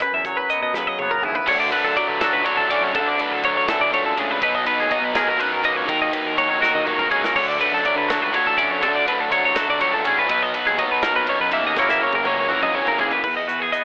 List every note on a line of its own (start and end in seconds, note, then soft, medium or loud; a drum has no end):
0.00 1.45 F#2 medium
0.00 0.26 F#3 medium
0.00 0.13 B4 medium
0.00 kick loud
0.00 closed hi-hat medium
0.13 0.34 E2 medium
0.13 0.25 E5 medium
0.25 1.45 F#3 medium
0.25 0.37 C#5 medium
0.25 kick medium
0.25 closed hi-hat medium
0.37 0.49 B4 medium
0.50 1.00 B3 medium
0.50 0.61 D#5 medium
0.50 closed hi-hat medium
0.62 0.72 B2 medium
0.62 0.75 D#5 medium
0.73 1.45 C#3 medium
0.73 1.15 F#3 medium
0.73 0.87 B4 medium
0.73 snare medium
0.87 0.99 D#5 medium
0.99 1.46 B3 medium
0.99 1.11 C#5 medium
0.99 high tom medium
1.11 1.23 A#4 medium
1.11 mid tom medium
1.22 1.33 D#2 medium
1.22 1.46 E4 medium
1.22 1.35 G#4 medium
1.22 mid tom medium
1.35 1.47 B4 medium
1.35 floor tom medium
1.47 1.69 D2 loud
1.47 1.95 D3 medium
1.47 2.45 D3 medium
1.47 1.74 F#3 medium
1.47 1.72 A3 loud
1.47 1.71 D4 loud
1.47 1.59 C#5 medium
1.47 kick loud
1.47 crash loud
1.60 1.72 D5 medium
1.71 1.96 F#3 medium
1.71 1.97 A3 medium
1.71 1.98 D4 medium
1.71 1.84 B4 medium
1.71 ride medium
1.84 1.95 F#2 medium
1.84 1.97 A4 medium
1.95 2.43 D3 medium
1.95 2.23 F#3 medium
1.95 3.44 F#3 medium
1.95 2.21 A3 medium
1.95 2.19 D4 medium
1.95 2.08 D5 medium
1.95 kick medium
1.95 ride medium
2.08 2.29 D3 medium
2.08 2.21 B4 medium
2.21 2.46 F#3 medium
2.21 2.45 A3 medium
2.21 2.46 D4 medium
2.21 5.16 F#4 medium
2.21 2.33 A4 medium
2.21 snare loud
2.21 ride medium
2.33 2.44 C#2 medium
2.33 2.45 B4 medium
2.45 2.92 D3 medium
2.45 2.73 F#3 medium
2.45 2.70 A3 medium
2.45 2.69 D4 medium
2.45 2.57 C#5 medium
2.45 ride medium
2.57 2.78 A1 medium
2.57 2.70 A4 medium
2.70 2.93 F#3 medium
2.70 2.94 A3 medium
2.70 2.92 C#4 medium
2.70 2.95 D4 medium
2.70 2.83 D5 medium
2.70 ride medium
2.81 2.96 F#2 medium
2.81 2.95 C#5 medium
2.93 3.43 D3 medium
2.93 3.15 D3 loud
2.93 3.93 D3 medium
2.93 3.21 F#3 medium
2.93 3.20 A3 loud
2.93 3.18 D4 loud
2.93 3.07 A4 medium
2.93 kick loud
2.93 ride medium
3.08 3.21 D5 medium
3.19 3.45 F#3 medium
3.19 3.45 A3 medium
3.19 3.46 D4 medium
3.19 3.33 B4 medium
3.19 ride medium
3.30 3.51 D2 medium
3.30 3.44 A4 medium
3.44 3.90 D3 medium
3.44 3.69 F#3 medium
3.44 3.71 F#3 medium
3.44 3.69 A3 medium
3.44 3.67 D4 medium
3.44 3.56 C#5 medium
3.44 kick medium
3.44 ride medium
3.55 3.66 A1 medium
3.55 3.69 C#5 medium
3.68 3.93 E3 medium
3.68 3.92 F#3 medium
3.68 3.91 A3 medium
3.68 3.92 D4 medium
3.68 3.81 A4 medium
3.68 snare loud
3.68 ride medium
3.79 3.90 D3 medium
3.79 3.93 D5 medium
3.91 4.13 C#2 medium
3.91 4.39 D3 medium
3.91 4.17 D3 medium
3.91 4.19 F#3 medium
3.91 4.17 A3 medium
3.91 4.16 D4 medium
3.91 4.05 C#5 medium
3.91 ride medium
4.06 4.19 A4 medium
4.17 4.38 C#2 medium
4.17 4.42 C#3 medium
4.17 4.41 F#3 medium
4.17 4.40 A3 medium
4.17 4.40 D4 medium
4.17 4.31 G#4 medium
4.17 ride medium
4.31 4.42 B4 medium
4.40 4.62 B1 loud
4.40 4.88 B2 medium
4.40 5.40 B2 medium
4.40 4.67 F#3 loud
4.40 4.65 B3 loud
4.40 4.64 D#4 loud
4.40 4.55 B4 loud
4.40 kick loud
4.40 ride loud
4.55 4.66 D#5 medium
4.65 4.90 F#3 medium
4.65 4.90 B3 medium
4.65 4.92 D#4 medium
4.65 4.79 B4 medium
4.65 ride medium
4.77 4.88 D#2 medium
4.77 4.91 G#4 medium
4.89 5.36 B2 medium
4.89 5.16 F#3 medium
4.89 6.38 F#3 medium
4.89 5.13 B3 medium
4.89 5.11 D#4 medium
4.89 5.04 D#5 medium
4.89 kick medium
4.89 ride medium
5.01 5.23 B2 medium
5.01 5.16 B4 medium
5.13 5.37 F#3 medium
5.13 5.38 B3 medium
5.13 5.38 D#4 medium
5.13 5.29 G#4 medium
5.13 5.86 A#4 medium
5.13 snare loud
5.13 ride medium
5.26 5.37 A#1 medium
5.26 5.40 A#4 medium
5.37 5.86 F#2 medium
5.37 5.85 B2 medium
5.37 5.64 F#3 medium
5.37 5.62 B3 medium
5.37 5.60 D#4 medium
5.37 5.53 B4 medium
5.37 ride medium
5.51 5.72 F#2 medium
5.51 5.64 A#4 medium
5.61 5.86 F#3 medium
5.61 5.86 B3 medium
5.61 5.86 D#4 medium
5.61 5.77 D#5 medium
5.61 ride medium
5.66 5.87 A#3 medium
5.75 5.89 C#2 medium
5.75 5.89 C#5 medium
5.85 6.09 D#2 medium
5.85 6.34 D#3 medium
5.85 6.83 D#3 medium
5.85 6.12 F#3 medium
5.85 6.10 A#3 loud
5.85 6.08 D#4 loud
5.85 6.01 A#4 medium
5.85 kick loud
5.85 ride loud
6.02 6.13 D#5 medium
6.10 6.35 F#3 medium
6.10 6.36 A#3 medium
6.10 6.37 D#4 medium
6.10 6.27 B4 medium
6.10 ride medium
6.26 6.46 D#2 medium
6.26 6.38 A#4 medium
6.35 6.84 D#3 medium
6.35 6.62 F#3 medium
6.35 7.85 F#3 medium
6.35 6.60 A#3 medium
6.35 6.58 D#4 medium
6.35 6.50 C#5 medium
6.35 kick medium
6.35 ride medium
6.51 6.61 A#1 medium
6.51 6.62 C#5 medium
6.59 6.86 F#3 medium
6.59 6.85 A#3 medium
6.59 6.87 D#4 medium
6.59 8.08 F#4 medium
6.59 6.74 A#4 medium
6.59 snare medium
6.75 6.85 D#3 medium
6.75 6.86 D#5 medium
6.85 7.07 C#2 medium
6.85 7.32 D#3 medium
6.85 7.33 D#3 medium
6.85 7.12 F#3 medium
6.85 7.10 A#3 medium
6.85 7.08 D#4 medium
6.85 6.98 C#5 medium
6.85 mid tom medium
6.99 7.11 A#4 medium
6.99 mid tom medium
7.09 7.32 C#2 medium
7.09 7.36 F#3 medium
7.09 7.34 A#3 medium
7.09 7.38 C#4 medium
7.09 7.33 D#4 medium
7.09 7.24 G#4 medium
7.09 kick loud
7.24 7.36 A#4 medium
7.24 snare medium
7.35 7.57 D2 loud
7.35 8.32 D3 medium
7.35 7.83 D3 medium
7.35 7.60 F#3 medium
7.35 7.60 A3 medium
7.35 7.58 D4 loud
7.35 7.48 C#5 medium
7.35 kick loud
7.35 crash loud
7.49 7.60 D5 medium
7.58 7.84 F#3 medium
7.58 7.85 A3 medium
7.58 7.86 D4 medium
7.58 7.73 B4 medium
7.58 ride medium
7.72 7.83 F#2 medium
7.72 7.85 A4 medium
7.83 8.31 D3 medium
7.83 8.11 F#3 medium
7.83 9.30 F#3 medium
7.83 8.09 A3 medium
7.83 8.07 D4 medium
7.83 7.97 D5 medium
7.83 kick medium
7.83 ride medium
7.96 8.17 D3 medium
7.96 8.10 B4 medium
8.08 8.33 F#3 medium
8.08 8.34 A3 medium
8.08 8.34 D4 medium
8.08 9.55 F#4 medium
8.08 8.22 A4 medium
8.08 snare loud
8.08 ride medium
8.20 8.31 C#2 medium
8.20 8.34 B4 medium
8.33 8.80 D3 medium
8.33 8.79 D3 medium
8.33 8.59 F#3 medium
8.33 8.57 A3 medium
8.33 8.56 D4 medium
8.33 8.46 C#5 medium
8.33 ride medium
8.45 8.66 A1 medium
8.45 8.58 A4 medium
8.56 8.82 F#3 medium
8.56 8.82 A3 medium
8.56 8.79 C#4 medium
8.56 8.83 D4 medium
8.56 8.71 D5 medium
8.56 ride medium
8.70 8.84 F#2 medium
8.70 8.83 C#5 medium
8.80 9.77 D3 medium
8.80 9.29 D3 medium
8.80 9.03 D3 medium
8.80 9.08 F#3 loud
8.80 9.06 A3 medium
8.80 9.05 D4 loud
8.80 8.95 A4 medium
8.80 kick loud
8.80 ride loud
8.95 9.07 D5 medium
9.06 9.31 F#3 medium
9.06 9.31 A3 medium
9.06 9.31 D4 medium
9.06 9.20 B4 medium
9.06 ride medium
9.20 9.40 D2 medium
9.20 9.32 A4 medium
9.30 9.78 D3 medium
9.30 10.77 F#3 medium
9.30 9.57 F#3 medium
9.30 9.54 A3 medium
9.30 9.53 D4 medium
9.30 9.44 C#5 medium
9.30 kick medium
9.30 ride medium
9.45 9.55 A1 medium
9.45 9.57 C#5 medium
9.54 9.79 F#3 medium
9.54 9.79 A3 medium
9.54 9.81 D4 medium
9.54 11.02 F#4 medium
9.54 9.69 A4 medium
9.54 snare loud
9.54 ride loud
9.69 9.79 D3 medium
9.69 9.81 D5 medium
9.78 10.02 C#2 medium
9.78 10.25 D3 medium
9.78 10.27 D3 medium
9.78 10.06 F#3 medium
9.78 10.04 A3 medium
9.78 10.03 D4 medium
9.78 9.93 C#5 medium
9.78 ride medium
9.94 10.05 A4 medium
10.04 10.27 A1 medium
10.04 10.28 F#3 medium
10.04 10.28 A3 medium
10.04 10.26 C#4 medium
10.04 10.27 D4 medium
10.04 10.18 G#4 medium
10.04 ride medium
10.19 10.30 B4 medium
10.27 10.50 B1 medium
10.27 10.75 B2 medium
10.27 11.27 B2 medium
10.27 10.56 F#3 medium
10.27 10.54 B3 loud
10.27 10.52 D#4 loud
10.27 kick loud
10.27 ride loud
10.31 10.43 B4 loud
10.43 10.55 D#5 medium
10.53 10.77 F#3 medium
10.53 10.77 B3 medium
10.53 10.78 D#4 medium
10.53 10.66 B4 medium
10.53 ride medium
10.67 10.77 D#2 medium
10.67 10.78 G#4 medium
10.76 11.25 B2 medium
10.76 11.04 F#3 medium
10.76 11.73 F#3 medium
10.76 11.02 B3 medium
10.76 11.01 D#4 medium
10.76 10.91 D#5 medium
10.76 kick medium
10.76 ride medium
10.91 11.11 B2 medium
10.91 11.03 B4 medium
11.02 11.26 F#3 medium
11.02 11.27 B3 medium
11.02 11.27 D#4 medium
11.02 11.73 A#4 medium
11.02 11.15 A#4 medium
11.02 snare loud
11.02 ride medium
11.16 11.26 A#1 medium
11.16 11.28 B4 medium
11.26 11.73 F#2 medium
11.26 11.74 B2 medium
11.26 11.52 F#3 medium
11.26 11.51 B3 medium
11.26 11.50 D#4 medium
11.26 11.40 C#5 medium
11.26 ride medium
11.40 11.61 F#2 medium
11.40 11.52 B4 medium
11.51 11.75 F#3 medium
11.51 11.74 A#3 medium
11.51 11.75 B3 medium
11.51 11.74 D#4 medium
11.51 11.65 E5 medium
11.51 ride medium
11.63 11.78 D#2 medium
11.63 11.77 D#5 medium
11.75 11.97 F#1 medium
11.75 12.25 F#2 medium
11.75 13.20 F#2 medium
11.75 12.22 C#3 loud
11.75 12.03 E3 medium
11.75 12.23 F#3 medium
11.75 12.01 A#3 loud
11.75 12.99 A#3 medium
11.75 12.00 C#4 loud
11.75 13.21 E4 medium
11.75 12.48 A#4 medium
11.75 11.90 C#5 medium
11.75 kick loud
11.75 snare medium
11.89 12.02 E5 medium
11.89 snare medium
12.01 12.24 E3 medium
12.01 12.24 A#3 medium
12.01 12.26 C#4 medium
12.01 12.14 C#5 medium
12.12 12.33 F#1 medium
12.12 12.26 A#4 medium
12.12 high tom medium
12.23 12.71 C#3 medium
12.23 12.50 E3 medium
12.23 13.20 F#3 medium
12.23 12.49 A#3 medium
12.23 12.47 C#4 medium
12.23 12.38 C#5 medium
12.23 high tom medium
12.37 12.48 C#2 medium
12.37 12.51 C#5 medium
12.48 12.72 E3 medium
12.48 12.73 A#3 medium
12.48 12.74 C#4 medium
12.48 12.63 F#4 medium
12.48 12.62 A#4 medium
12.48 mid tom medium
12.62 12.72 F#2 medium
12.62 13.23 G#4 soft
12.62 12.75 D#5 medium
12.62 mid tom medium
12.72 12.95 E1 medium
12.72 13.21 C#3 medium
12.72 13.20 C#3 medium
12.72 13.00 E3 medium
12.72 12.98 A#3 medium
12.72 12.97 C#4 medium
12.72 12.87 C#5 medium
12.87 12.99 A#4 medium
12.87 floor tom medium
12.98 13.19 B1 medium
12.98 13.23 E3 medium
12.98 13.22 A#3 medium
12.98 13.21 A#3 medium
12.98 13.21 C#4 medium
12.98 13.12 G#4 medium
12.98 floor tom loud
13.12 13.23 B4 medium
13.12 floor tom medium
13.24 13.34 E2 medium
13.24 13.84 E2 medium
13.24 13.36 B4 medium
13.24 kick loud
13.24 crash medium
13.37 13.48 D#5 medium
13.47 13.69 E2 medium
13.47 13.62 F#4 medium
13.47 13.60 B4 medium
13.47 closed hi-hat medium
13.60 13.72 G#4 medium
13.60 13.84 G#4 soft
13.72 13.84 B3 medium
13.72 13.84 D#5 medium
13.72 closed hi-hat medium